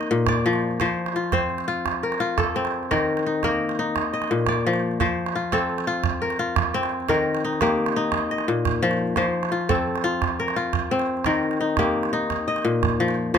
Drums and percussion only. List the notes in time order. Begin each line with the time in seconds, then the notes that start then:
0.01 calabash click
0.27 calabash thump, calabash click
0.44 calabash click
0.53 calabash click
0.62 calabash click
0.71 calabash click
0.80 calabash thump, calabash click
1.06 calabash click
1.24 calabash click
1.32 calabash thump, calabash click
1.50 calabash click
1.58 calabash click
1.86 calabash thump, calabash click
2.12 calabash click
2.38 calabash thump, calabash click
2.56 calabash click
2.65 calabash click
2.74 calabash click
2.83 calabash click
2.91 calabash thump, calabash click
3.17 calabash click
3.43 calabash thump, calabash click
3.52 calabash click
3.69 calabash click
3.96 calabash thump, calabash click
4.22 calabash click
4.39 calabash click
4.47 calabash thump, calabash click
4.74 calabash click
4.91 calabash click
5.00 calabash thump, calabash click
5.26 calabash click
5.52 calabash thump, calabash click
5.69 calabash click
5.78 calabash click
6.04 calabash thump, calabash click
6.30 calabash click
6.56 calabash thump, calabash click
6.74 calabash click
6.83 calabash click
6.92 calabash click
7.00 calabash click
7.08 calabash thump, calabash click
7.35 calabash click
7.53 calabash click
7.61 calabash thump, calabash click
7.78 calabash click
7.86 calabash click
8.12 calabash thump, calabash click
8.38 calabash click
8.65 calabash thump, calabash click
8.83 calabash click
8.91 calabash click
8.99 calabash click
9.07 calabash click
9.16 calabash thump, calabash click
9.43 calabash click
9.61 calabash click
9.69 calabash thump, calabash click
9.88 calabash click
9.96 calabash click
10.22 calabash thump, calabash click
10.48 calabash click
10.73 calabash thump, calabash click
10.91 calabash click
10.99 calabash click
11.08 calabash click
11.17 calabash click
11.24 calabash thump, calabash click
11.35 calabash click
11.43 calabash click
11.51 calabash click
11.77 calabash thump, calabash click
11.86 calabash click
12.03 calabash click
12.21 calabash click
12.30 calabash thump, calabash click
12.56 calabash click
12.83 calabash thump, calabash click
13.01 calabash click
13.08 calabash click
13.35 calabash thump, calabash click